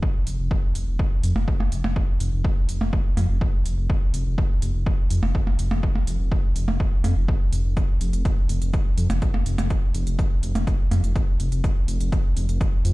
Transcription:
0.03 kick
0.27 F1, open hi-hat
0.39 F1
0.51 kick
0.75 F1, open hi-hat
0.87 F1
0.99 kick
1.24 F2, open hi-hat
1.36 F1, percussion blips
1.48 kick
1.60 percussion blips
1.72 F1, open hi-hat
1.84 F1, percussion blips
1.96 kick
2.20 F1, open hi-hat
2.33 F1
2.44 kick
2.69 F1, open hi-hat
2.81 F1, percussion blips
2.93 kick
3.17 F2, open hi-hat, percussion blips
3.29 F1
3.41 kick
3.65 F1, open hi-hat
3.78 F1
3.90 kick
4.14 F1, open hi-hat
4.26 F1
4.38 kick
4.62 F1, open hi-hat
4.75 F1
4.86 kick
5.10 F2, open hi-hat
5.23 F1, percussion blips
5.35 kick
5.47 percussion blips
5.59 F1, open hi-hat
5.71 F1, percussion blips
5.83 kick
5.95 percussion blips
6.07 F1, open hi-hat
6.20 F1
6.32 kick
6.56 F1, open hi-hat
6.68 F1, percussion blips
6.80 kick
7.04 F2, open hi-hat, percussion blips
7.16 F1
7.28 kick
7.52 F1, open hi-hat
7.65 F1
7.77 kick, closed hi-hat
8.01 F1, open hi-hat
8.13 F1, closed hi-hat
8.25 kick, closed hi-hat
8.49 F1, open hi-hat
8.62 F1, closed hi-hat
8.73 kick, closed hi-hat
8.98 F2, open hi-hat
9.10 F1, closed hi-hat, percussion blips
9.22 kick, closed hi-hat
9.34 percussion blips
9.46 F1, open hi-hat
9.58 F1, closed hi-hat, percussion blips
9.70 kick, closed hi-hat
9.95 F1, open hi-hat
10.07 F1, closed hi-hat
10.19 kick, closed hi-hat
10.43 F1, open hi-hat
10.55 F1, closed hi-hat, percussion blips
10.67 kick, closed hi-hat
10.91 F2, open hi-hat, percussion blips
11.04 F1, closed hi-hat
11.16 kick, closed hi-hat
11.40 F1, open hi-hat
11.52 F1, closed hi-hat
11.64 kick, closed hi-hat
11.88 F1, open hi-hat
12.00 F1, closed hi-hat
12.12 kick, closed hi-hat
12.36 F1, open hi-hat
12.49 F1, closed hi-hat
12.61 kick, closed hi-hat
12.85 F2, open hi-hat

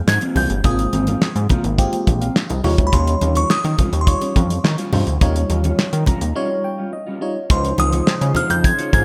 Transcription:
0.07 G#2 G#6, muted clean electric guitar stroke, snare, clap, muted conga
0.21 A#3 C4 F4, closed hi-hat, muted conga
0.35 C2 G#3 A#3 C4 F4 G4 G#4 G6, open hi-hat, high conga, low conga
0.50 G1, muted clean electric guitar stroke, closed hi-hat
0.64 G#1 G#3 A#3 C4 F4 G#4 D#6, kick, closed hi-hat, muted conga, low conga
0.71 C4
0.79 closed hi-hat, muted conga
0.93 G#1 A#3 C4 F4, closed hi-hat, high conga
1.07 A#3 C4 F4, closed hi-hat, high conga
1.21 G#2, snare, clap, muted conga
1.36 G#2, muted clean electric guitar stroke, closed hi-hat
1.49 A#3 C4 F4, kick, closed hi-hat, high conga, low conga
1.64 G#1, muted clean electric guitar stroke, closed hi-hat
1.78 G#3 A#3 C4 F4 G4, kick, closed hi-hat, muted conga
1.93 muted clean electric guitar stroke, closed hi-hat, muted conga
2.07 A#1 C5, muted clean electric guitar stroke, kick, closed hi-hat, high conga
2.21 A#3 C4 F4 F5, closed hi-hat
2.36 snare, clap
2.50 C2 D#5, muted clean electric guitar stroke, closed hi-hat, muted conga
2.64 D#2 G3 C#4 D#4 F4 C#5, open hi-hat, high conga, low conga
2.78 D2, muted clean electric guitar stroke, kick, closed hi-hat
2.87 B5
2.92 D#2 G3 C#4 F4 C6, kick, closed hi-hat, low conga
3.07 closed hi-hat, muted conga
3.21 D#2 G3 C#4 F4, closed hi-hat, high conga
3.35 G3 C#4 G4 C#6, closed hi-hat, high conga
3.50 D#3 D#6, muted clean electric guitar stroke, snare, clap, muted conga
3.64 D#3, muted clean electric guitar stroke, closed hi-hat, muted conga
3.78 G3 C#4 F4, kick, closed hi-hat, high conga, low conga
3.92 D#2, muted clean electric guitar stroke, closed hi-hat
4.01 C6
4.07 G3 D#4 F4 C#5 C#6, muted clean electric guitar stroke, kick, closed hi-hat, muted conga
4.21 G3 C#4 G4, closed hi-hat, muted conga
4.35 F2 G3 C#4 F4, kick, closed hi-hat, high conga
4.50 muted clean electric guitar stroke, closed hi-hat
4.64 D#3, muted clean electric guitar stroke, snare, clap
4.78 G3 C#4 F4, closed hi-hat
4.92 G2 G3 C#4 D#4 F4 G4 C5, open hi-hat, high conga, low conga
5.07 D2, muted clean electric guitar stroke, closed hi-hat
5.21 D#2 G3 C#4 D#4 F4 C#5, kick, closed hi-hat, muted conga, low conga
5.36 closed hi-hat
5.50 D#2 G3 C#4 F4, closed hi-hat, high conga
5.64 G3 C#4 F4, closed hi-hat, high conga
5.78 D#3, muted clean electric guitar stroke, snare, clap, muted conga
5.93 D#3, muted clean electric guitar stroke, closed hi-hat
6.06 G3 C#4 F4 A#5, kick, closed hi-hat, high conga, low conga
6.21 D#2, muted clean electric guitar stroke, closed hi-hat
6.35 G3 C#4 D#4 F4 C#5 F5
6.50 muted clean electric guitar stroke
6.64 G5, muted clean electric guitar stroke
6.78 G3 C#4 F4
6.92 D#5, muted clean electric guitar stroke
7.06 G3 C#4 F4
7.21 G3 D#4 F4 C#5, muted clean electric guitar stroke
7.35 muted clean electric guitar stroke
7.49 C#2 C#3 F3 G#3 C#4 D#4 F4 C5 C6, kick, closed hi-hat, muted conga
7.65 closed hi-hat, muted conga
7.78 C#2 D#4 F4 C5 D#6, closed hi-hat, high conga
7.92 D#4 F4 C#5, closed hi-hat, high conga
8.07 C#3, muted clean electric guitar stroke, snare, clap
8.21 C#3, muted clean electric guitar stroke, closed hi-hat, muted conga
8.35 D#4 F4 C5 F6, closed hi-hat, high conga, low conga
8.50 F2 G6, muted clean electric guitar stroke, closed hi-hat
8.64 G#6, muted clean electric guitar stroke, kick, closed hi-hat, muted conga
8.78 D#4 F4 C#5, closed hi-hat
8.93 G#2 D#4 F4 C5 G#6, kick, closed hi-hat, high conga

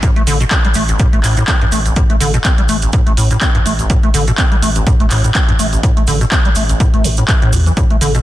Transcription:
0.02 A2, kick, closed hi-hat, cabasa
0.16 A3, closed hi-hat
0.27 A1 D3, open hi-hat, cabasa
0.40 B2, closed hi-hat, cabasa
0.51 C4, kick, clap, closed hi-hat, cabasa
0.65 G3, closed hi-hat
0.74 A1 A3, open hi-hat, cabasa
0.88 A1, closed hi-hat, cabasa
0.99 A2, kick, closed hi-hat, cabasa
1.13 A1 A3, closed hi-hat
1.24 A1 A2, clap, open hi-hat, cabasa
1.37 A2, closed hi-hat, cabasa
1.48 C4, kick, clap, closed hi-hat, cabasa
1.61 G2, closed hi-hat
1.72 A1 A3, open hi-hat, cabasa
1.86 A1, closed hi-hat, cabasa
1.96 A2, kick, closed hi-hat, cabasa
2.10 A3, closed hi-hat
2.20 A1 D3, open hi-hat, cabasa
2.34 B2, closed hi-hat, cabasa
2.44 C4, kick, clap, closed hi-hat, cabasa
2.58 G3, closed hi-hat
2.69 A1 A3, open hi-hat, cabasa
2.82 A1, closed hi-hat, cabasa
2.92 A2, kick, closed hi-hat, cabasa
3.07 A1 A3, closed hi-hat
3.17 A1 A2, open hi-hat, cabasa
3.31 A2, closed hi-hat, cabasa
3.41 C4, kick, clap, closed hi-hat, cabasa
3.55 G2, closed hi-hat
3.66 A1 A3, open hi-hat, cabasa
3.79 A1, closed hi-hat, cabasa
3.90 A2, kick, closed hi-hat, cabasa
4.03 A3, closed hi-hat
4.14 A1 D3, open hi-hat, cabasa
4.27 B2, closed hi-hat, cabasa
4.38 C4, kick, clap, closed hi-hat, cabasa
4.52 G3, closed hi-hat
4.62 A1 A3, open hi-hat, cabasa
4.75 A1, closed hi-hat, cabasa
4.87 A2, kick, closed hi-hat, cabasa
5.00 A1 A3, closed hi-hat
5.11 A1 A2, clap, open hi-hat, cabasa
5.24 A2, closed hi-hat, cabasa
5.35 C4, kick, clap, closed hi-hat, cabasa
5.48 G2, closed hi-hat
5.59 A1 A3, open hi-hat, cabasa
5.73 A1, closed hi-hat, cabasa
5.83 A2, kick, closed hi-hat, cabasa
5.97 A3, closed hi-hat
6.07 A1 D3, open hi-hat, cabasa
6.21 B2, closed hi-hat, cabasa
6.32 C4, kick, clap, closed hi-hat, cabasa
6.45 G3, closed hi-hat
6.55 A1 A3, open hi-hat, cabasa
6.69 A1, closed hi-hat, cabasa
6.80 A2, kick, closed hi-hat, cabasa
6.94 A1 A3, closed hi-hat
7.04 A1 A2, open hi-hat, cabasa
7.17 A2, closed hi-hat, cabasa
7.28 A2, kick, clap, closed hi-hat, cabasa
7.42 A2, closed hi-hat
7.53 E2 B2, open hi-hat, cabasa
7.66 E3, closed hi-hat, cabasa
7.77 A2, kick, closed hi-hat, cabasa
7.90 A3, closed hi-hat
8.01 A1 D3, open hi-hat, cabasa
8.15 B2, closed hi-hat, cabasa

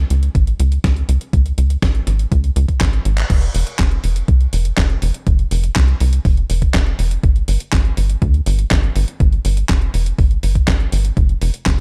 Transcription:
0.10 C#2, closed hi-hat
0.23 closed hi-hat
0.35 G#1, kick, closed hi-hat
0.47 closed hi-hat
0.60 C#2, closed hi-hat
0.72 closed hi-hat
0.84 C#2, kick, snare, closed hi-hat
0.96 closed hi-hat
1.09 C#2, closed hi-hat
1.21 closed hi-hat
1.33 C#2, kick, closed hi-hat
1.46 closed hi-hat
1.58 C#2, closed hi-hat
1.70 closed hi-hat
1.82 G#1, kick, snare, closed hi-hat
1.95 closed hi-hat
2.07 G#1, snare, closed hi-hat
2.19 closed hi-hat
2.32 C#2, kick, closed hi-hat
2.44 closed hi-hat
2.56 C#2, closed hi-hat
2.68 kick, closed hi-hat
2.81 G#1, kick, snare, clap, closed hi-hat
2.93 closed hi-hat
3.05 G#1, closed hi-hat
3.18 clap, closed hi-hat
3.30 F1, kick, closed hi-hat, crash
3.42 closed hi-hat
3.54 F1, open hi-hat
3.67 closed hi-hat
3.79 F1, kick, snare, clap, closed hi-hat
3.91 closed hi-hat
4.04 F1, open hi-hat
4.16 closed hi-hat
4.28 C2, kick, closed hi-hat
4.41 closed hi-hat
4.53 F1, open hi-hat
4.65 closed hi-hat
4.77 F1, kick, snare, clap, closed hi-hat
4.90 closed hi-hat
5.02 F1, open hi-hat
5.14 closed hi-hat
5.27 F1, kick, closed hi-hat
5.39 closed hi-hat
5.51 F1, open hi-hat
5.64 closed hi-hat
5.76 C2, kick, snare, clap, closed hi-hat
5.88 closed hi-hat
6.00 C2, open hi-hat
6.13 closed hi-hat
6.25 F1, kick, open hi-hat
6.37 closed hi-hat
6.50 F1, open hi-hat
6.62 kick, closed hi-hat
6.74 F1, kick, snare, clap, closed hi-hat
6.87 closed hi-hat
6.99 F1, open hi-hat
7.11 closed hi-hat
7.23 G1, kick, closed hi-hat
7.36 closed hi-hat
7.48 G1, open hi-hat
7.60 closed hi-hat
7.73 G1, kick, snare, clap, closed hi-hat
7.85 closed hi-hat
7.97 G1, open hi-hat
8.10 closed hi-hat
8.22 D2, kick, closed hi-hat
8.34 closed hi-hat
8.46 G1, open hi-hat
8.59 closed hi-hat
8.71 G1, kick, snare, clap, closed hi-hat
8.83 closed hi-hat
8.96 G1, open hi-hat
9.08 closed hi-hat
9.20 G1, kick, closed hi-hat
9.32 closed hi-hat
9.45 G1, open hi-hat
9.57 closed hi-hat
9.69 F1, kick, snare, clap, closed hi-hat
9.82 closed hi-hat
9.94 F1, open hi-hat
10.06 closed hi-hat
10.19 G1, kick, open hi-hat
10.31 closed hi-hat
10.43 G1, open hi-hat
10.55 kick, closed hi-hat
10.68 G1, kick, snare, clap, closed hi-hat
10.80 closed hi-hat
10.92 G1, open hi-hat
11.05 closed hi-hat
11.17 F1, kick, closed hi-hat
11.29 closed hi-hat
11.42 F1, open hi-hat
11.54 closed hi-hat
11.66 F1, kick, snare, clap, closed hi-hat

